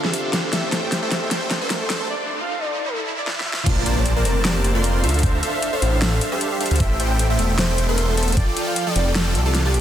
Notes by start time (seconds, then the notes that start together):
Already playing: D3 C4 D4 F4 A4 C5 E5, riser
0.04 D4 G4 A4 C5 E5 F5, snare
0.14 closed hi-hat
0.24 G4
0.33 D2 D4 A4 C5 E5 F5, snare, closed hi-hat
0.52 A1 A3 E4 G4 A4 C5 E5 G5, snare, closed hi-hat
0.72 A3 A4 C5 E5 G5, snare, closed hi-hat
0.81 A3 E4 G4 G5
0.85 C5
0.92 snare, closed hi-hat
1.02 A3 A4 C5 E5 G5
1.11 E1, snare, closed hi-hat
1.31 A3 A4 C5 E5 G5, snare, closed hi-hat
1.51 E1, snare, closed hi-hat
1.61 A3 A4 A#4 C5 E5 C6
1.70 snare, closed hi-hat
1.81 A4
1.90 A3 A4 C5 E5 A5, snare, closed hi-hat
2.10 D5
2.40 F5
2.59 D5
2.88 A4
3.18 D5
3.27 snare
3.38 E5, snare
3.53 snare
3.66 A#1 A#3 A#4 C5 D5 A5, kick, closed hi-hat, crash, impact
3.86 A#3 A#4 C5 D5 A5, closed hi-hat
3.96 D5
4.06 closed hi-hat
4.16 A#3 A#4 C5 D5 A5
4.25 F1, closed hi-hat
4.45 A#3 G4 A#4 C5 D5 A5, snare, closed hi-hat
4.64 F1, closed hi-hat
4.75 A#3 F4 A#4 C5 D5 C6
4.84 closed hi-hat
4.94 F4
5.04 D2 D4 A4 C5 E5 F5, closed hi-hat
5.09 closed hi-hat
5.14 closed hi-hat
5.19 closed hi-hat
5.23 D4 A4 C5 E5 F5, kick, closed hi-hat
5.43 D4 A4 C5 E5 F5, closed hi-hat
5.53 E5
5.63 closed hi-hat
5.73 D4 A4 C5 E5 F5
5.82 A1, closed hi-hat
6.01 D4 A4 C5 E5 F5, snare, closed hi-hat
6.21 closed hi-hat
6.32 D4 G4 A4 C5 E5 F5
6.41 closed hi-hat
6.51 G4
6.61 D4 A4 C5 E5 F5, closed hi-hat
6.66 closed hi-hat
6.71 D2, closed hi-hat
6.76 closed hi-hat
6.80 A1 A3 A4 C5 E5 G5, kick, closed hi-hat
7.00 A3 A4 C5 E5 G5, closed hi-hat
7.10 G5
7.19 closed hi-hat
7.30 A3 A4 C5 E5 G5
7.39 E1, closed hi-hat
7.59 A3 A4 C5 E5 G5, snare, closed hi-hat
7.78 E1, closed hi-hat
7.89 A3 A4 A#4 C5 E5 C6
7.98 closed hi-hat
8.09 A4
8.17 A3 A4 C5 E5 A5, closed hi-hat
8.23 closed hi-hat
8.28 closed hi-hat
8.32 closed hi-hat
8.37 F3 F4 A4 D5 G5, kick, closed hi-hat
8.57 F3 F4 A4 D5 G5, closed hi-hat
8.67 F5
8.76 closed hi-hat
8.87 F3 F4 A4 D5 G5
8.96 F1, closed hi-hat
9.15 F3 F4 A4 D5 G5, snare, closed hi-hat
9.35 C2, closed hi-hat
9.45 F3 F4 A4 D5 A5
9.55 snare, closed hi-hat
9.65 F3 F4 G4 A4 D5 A5
9.74 A1, closed hi-hat